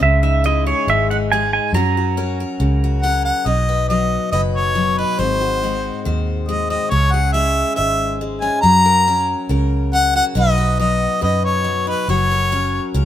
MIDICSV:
0, 0, Header, 1, 5, 480
1, 0, Start_track
1, 0, Key_signature, 5, "major"
1, 0, Tempo, 431034
1, 11, Time_signature, 4, 2, 24, 8
1, 14532, End_track
2, 0, Start_track
2, 0, Title_t, "Pedal steel guitar"
2, 0, Program_c, 0, 26
2, 30, Note_on_c, 0, 76, 77
2, 245, Note_off_c, 0, 76, 0
2, 259, Note_on_c, 0, 76, 75
2, 503, Note_off_c, 0, 76, 0
2, 510, Note_on_c, 0, 75, 79
2, 743, Note_off_c, 0, 75, 0
2, 747, Note_on_c, 0, 73, 75
2, 987, Note_off_c, 0, 73, 0
2, 998, Note_on_c, 0, 76, 84
2, 1210, Note_off_c, 0, 76, 0
2, 1231, Note_on_c, 0, 78, 78
2, 1293, Note_off_c, 0, 78, 0
2, 1465, Note_on_c, 0, 80, 84
2, 1694, Note_off_c, 0, 80, 0
2, 1708, Note_on_c, 0, 80, 92
2, 1942, Note_off_c, 0, 80, 0
2, 1946, Note_on_c, 0, 82, 83
2, 3336, Note_off_c, 0, 82, 0
2, 14532, End_track
3, 0, Start_track
3, 0, Title_t, "Harmonica"
3, 0, Program_c, 1, 22
3, 3367, Note_on_c, 1, 78, 88
3, 3594, Note_off_c, 1, 78, 0
3, 3617, Note_on_c, 1, 78, 87
3, 3861, Note_on_c, 1, 75, 87
3, 3877, Note_off_c, 1, 78, 0
3, 4327, Note_off_c, 1, 75, 0
3, 4334, Note_on_c, 1, 75, 77
3, 4781, Note_off_c, 1, 75, 0
3, 4807, Note_on_c, 1, 75, 83
3, 4917, Note_off_c, 1, 75, 0
3, 5059, Note_on_c, 1, 73, 77
3, 5543, Note_on_c, 1, 71, 73
3, 5560, Note_off_c, 1, 73, 0
3, 5779, Note_on_c, 1, 72, 83
3, 5795, Note_off_c, 1, 71, 0
3, 6737, Note_off_c, 1, 72, 0
3, 7223, Note_on_c, 1, 75, 81
3, 7443, Note_off_c, 1, 75, 0
3, 7462, Note_on_c, 1, 75, 79
3, 7685, Note_on_c, 1, 73, 85
3, 7702, Note_off_c, 1, 75, 0
3, 7927, Note_on_c, 1, 78, 86
3, 7944, Note_off_c, 1, 73, 0
3, 8154, Note_off_c, 1, 78, 0
3, 8161, Note_on_c, 1, 76, 82
3, 8614, Note_off_c, 1, 76, 0
3, 8636, Note_on_c, 1, 76, 82
3, 9091, Note_off_c, 1, 76, 0
3, 9363, Note_on_c, 1, 80, 81
3, 9587, Note_off_c, 1, 80, 0
3, 9593, Note_on_c, 1, 82, 108
3, 10519, Note_off_c, 1, 82, 0
3, 11070, Note_on_c, 1, 78, 95
3, 11285, Note_off_c, 1, 78, 0
3, 11311, Note_on_c, 1, 78, 88
3, 11415, Note_off_c, 1, 78, 0
3, 11549, Note_on_c, 1, 75, 93
3, 11987, Note_off_c, 1, 75, 0
3, 12024, Note_on_c, 1, 75, 82
3, 12465, Note_off_c, 1, 75, 0
3, 12508, Note_on_c, 1, 75, 88
3, 12723, Note_off_c, 1, 75, 0
3, 12753, Note_on_c, 1, 73, 77
3, 13189, Note_off_c, 1, 73, 0
3, 13236, Note_on_c, 1, 71, 71
3, 13448, Note_off_c, 1, 71, 0
3, 13472, Note_on_c, 1, 73, 86
3, 14375, Note_off_c, 1, 73, 0
3, 14532, End_track
4, 0, Start_track
4, 0, Title_t, "Steel-string acoustic guitar"
4, 0, Program_c, 2, 25
4, 0, Note_on_c, 2, 49, 61
4, 256, Note_on_c, 2, 63, 53
4, 491, Note_on_c, 2, 56, 61
4, 501, Note_on_c, 2, 64, 47
4, 740, Note_on_c, 2, 68, 61
4, 966, Note_off_c, 2, 49, 0
4, 982, Note_on_c, 2, 44, 57
4, 1215, Note_off_c, 2, 63, 0
4, 1237, Note_on_c, 2, 63, 55
4, 1453, Note_off_c, 2, 56, 0
4, 1457, Note_off_c, 2, 68, 0
4, 1473, Note_on_c, 2, 56, 57
4, 1482, Note_on_c, 2, 68, 60
4, 1906, Note_off_c, 2, 64, 0
4, 1915, Note_off_c, 2, 56, 0
4, 1917, Note_off_c, 2, 63, 0
4, 1938, Note_off_c, 2, 44, 0
4, 1941, Note_on_c, 2, 54, 66
4, 1947, Note_on_c, 2, 61, 55
4, 1948, Note_off_c, 2, 68, 0
4, 1956, Note_on_c, 2, 66, 51
4, 1966, Note_on_c, 2, 70, 57
4, 2183, Note_off_c, 2, 66, 0
4, 2197, Note_on_c, 2, 66, 52
4, 2405, Note_off_c, 2, 61, 0
4, 2411, Note_off_c, 2, 70, 0
4, 2419, Note_on_c, 2, 61, 56
4, 2424, Note_on_c, 2, 70, 59
4, 2659, Note_off_c, 2, 70, 0
4, 2675, Note_on_c, 2, 70, 54
4, 2894, Note_on_c, 2, 49, 57
4, 3146, Note_off_c, 2, 66, 0
4, 3160, Note_on_c, 2, 66, 52
4, 3366, Note_off_c, 2, 61, 0
4, 3372, Note_off_c, 2, 70, 0
4, 3379, Note_on_c, 2, 61, 59
4, 3385, Note_on_c, 2, 70, 58
4, 3828, Note_off_c, 2, 61, 0
4, 3831, Note_off_c, 2, 70, 0
4, 3839, Note_off_c, 2, 66, 0
4, 3853, Note_on_c, 2, 47, 58
4, 3855, Note_off_c, 2, 49, 0
4, 3860, Note_on_c, 2, 63, 49
4, 4106, Note_on_c, 2, 71, 60
4, 4329, Note_off_c, 2, 54, 0
4, 4342, Note_on_c, 2, 54, 52
4, 4351, Note_on_c, 2, 66, 52
4, 4804, Note_off_c, 2, 47, 0
4, 4809, Note_off_c, 2, 71, 0
4, 4817, Note_on_c, 2, 47, 59
4, 4823, Note_on_c, 2, 71, 60
4, 5279, Note_off_c, 2, 54, 0
4, 5293, Note_on_c, 2, 54, 58
4, 5547, Note_off_c, 2, 63, 0
4, 5552, Note_on_c, 2, 63, 49
4, 5748, Note_off_c, 2, 47, 0
4, 5751, Note_off_c, 2, 71, 0
4, 5755, Note_off_c, 2, 66, 0
4, 5775, Note_on_c, 2, 44, 60
4, 5783, Note_off_c, 2, 63, 0
4, 5788, Note_on_c, 2, 60, 52
4, 6025, Note_on_c, 2, 66, 52
4, 6254, Note_off_c, 2, 54, 0
4, 6261, Note_off_c, 2, 66, 0
4, 6272, Note_on_c, 2, 56, 48
4, 6280, Note_on_c, 2, 66, 51
4, 6741, Note_on_c, 2, 51, 61
4, 6751, Note_on_c, 2, 72, 62
4, 7210, Note_off_c, 2, 56, 0
4, 7223, Note_on_c, 2, 56, 55
4, 7450, Note_off_c, 2, 60, 0
4, 7463, Note_on_c, 2, 60, 48
4, 7670, Note_off_c, 2, 51, 0
4, 7671, Note_off_c, 2, 56, 0
4, 7671, Note_off_c, 2, 60, 0
4, 7675, Note_off_c, 2, 72, 0
4, 7677, Note_off_c, 2, 66, 0
4, 7695, Note_off_c, 2, 44, 0
4, 7700, Note_on_c, 2, 49, 61
4, 7705, Note_on_c, 2, 61, 49
4, 7949, Note_on_c, 2, 68, 59
4, 8175, Note_on_c, 2, 56, 55
4, 8181, Note_on_c, 2, 64, 53
4, 8641, Note_off_c, 2, 68, 0
4, 8644, Note_on_c, 2, 44, 58
4, 8655, Note_on_c, 2, 68, 59
4, 8657, Note_off_c, 2, 49, 0
4, 9130, Note_off_c, 2, 56, 0
4, 9143, Note_on_c, 2, 56, 54
4, 9364, Note_off_c, 2, 61, 0
4, 9378, Note_on_c, 2, 61, 52
4, 9587, Note_off_c, 2, 61, 0
4, 9589, Note_off_c, 2, 64, 0
4, 9590, Note_off_c, 2, 56, 0
4, 9609, Note_off_c, 2, 44, 0
4, 9612, Note_on_c, 2, 54, 61
4, 9614, Note_off_c, 2, 68, 0
4, 9620, Note_on_c, 2, 66, 54
4, 9863, Note_on_c, 2, 70, 59
4, 10095, Note_off_c, 2, 70, 0
4, 10106, Note_on_c, 2, 61, 59
4, 10113, Note_on_c, 2, 70, 52
4, 10569, Note_off_c, 2, 70, 0
4, 10572, Note_on_c, 2, 49, 57
4, 10582, Note_on_c, 2, 70, 58
4, 11046, Note_off_c, 2, 61, 0
4, 11059, Note_on_c, 2, 61, 53
4, 11303, Note_off_c, 2, 66, 0
4, 11307, Note_on_c, 2, 66, 49
4, 11507, Note_off_c, 2, 61, 0
4, 11508, Note_off_c, 2, 70, 0
4, 11527, Note_on_c, 2, 47, 68
4, 11530, Note_off_c, 2, 54, 0
4, 11532, Note_off_c, 2, 49, 0
4, 11535, Note_on_c, 2, 54, 44
4, 11544, Note_off_c, 2, 66, 0
4, 11544, Note_on_c, 2, 63, 53
4, 11548, Note_on_c, 2, 66, 53
4, 11556, Note_on_c, 2, 71, 55
4, 11767, Note_off_c, 2, 71, 0
4, 11781, Note_on_c, 2, 71, 63
4, 12017, Note_off_c, 2, 54, 0
4, 12021, Note_on_c, 2, 54, 56
4, 12026, Note_off_c, 2, 66, 0
4, 12030, Note_on_c, 2, 66, 52
4, 12473, Note_off_c, 2, 47, 0
4, 12481, Note_off_c, 2, 71, 0
4, 12486, Note_on_c, 2, 47, 55
4, 12494, Note_on_c, 2, 71, 58
4, 12953, Note_off_c, 2, 54, 0
4, 12967, Note_on_c, 2, 54, 54
4, 13204, Note_off_c, 2, 63, 0
4, 13218, Note_on_c, 2, 63, 50
4, 13419, Note_off_c, 2, 47, 0
4, 13423, Note_off_c, 2, 71, 0
4, 13425, Note_off_c, 2, 63, 0
4, 13431, Note_off_c, 2, 66, 0
4, 13448, Note_off_c, 2, 54, 0
4, 13462, Note_on_c, 2, 54, 68
4, 13470, Note_on_c, 2, 66, 54
4, 13713, Note_on_c, 2, 70, 61
4, 13935, Note_off_c, 2, 70, 0
4, 13941, Note_on_c, 2, 61, 57
4, 13948, Note_on_c, 2, 70, 61
4, 14411, Note_off_c, 2, 70, 0
4, 14414, Note_on_c, 2, 49, 60
4, 14424, Note_on_c, 2, 70, 62
4, 14532, Note_off_c, 2, 49, 0
4, 14532, Note_off_c, 2, 54, 0
4, 14532, Note_off_c, 2, 61, 0
4, 14532, Note_off_c, 2, 66, 0
4, 14532, Note_off_c, 2, 70, 0
4, 14532, End_track
5, 0, Start_track
5, 0, Title_t, "Fingered electric bass"
5, 0, Program_c, 3, 33
5, 12, Note_on_c, 3, 37, 89
5, 802, Note_off_c, 3, 37, 0
5, 971, Note_on_c, 3, 32, 72
5, 1762, Note_off_c, 3, 32, 0
5, 1922, Note_on_c, 3, 42, 78
5, 2717, Note_off_c, 3, 42, 0
5, 2895, Note_on_c, 3, 37, 69
5, 3684, Note_off_c, 3, 37, 0
5, 3850, Note_on_c, 3, 35, 83
5, 4642, Note_off_c, 3, 35, 0
5, 4815, Note_on_c, 3, 30, 64
5, 5605, Note_off_c, 3, 30, 0
5, 5780, Note_on_c, 3, 32, 88
5, 6567, Note_off_c, 3, 32, 0
5, 6751, Note_on_c, 3, 39, 71
5, 7533, Note_off_c, 3, 39, 0
5, 7705, Note_on_c, 3, 37, 85
5, 8490, Note_off_c, 3, 37, 0
5, 8670, Note_on_c, 3, 32, 70
5, 9453, Note_off_c, 3, 32, 0
5, 9615, Note_on_c, 3, 42, 78
5, 10403, Note_off_c, 3, 42, 0
5, 10573, Note_on_c, 3, 37, 68
5, 11362, Note_off_c, 3, 37, 0
5, 11530, Note_on_c, 3, 35, 86
5, 12320, Note_off_c, 3, 35, 0
5, 12502, Note_on_c, 3, 42, 66
5, 13286, Note_off_c, 3, 42, 0
5, 13455, Note_on_c, 3, 30, 83
5, 14241, Note_off_c, 3, 30, 0
5, 14416, Note_on_c, 3, 37, 75
5, 14532, Note_off_c, 3, 37, 0
5, 14532, End_track
0, 0, End_of_file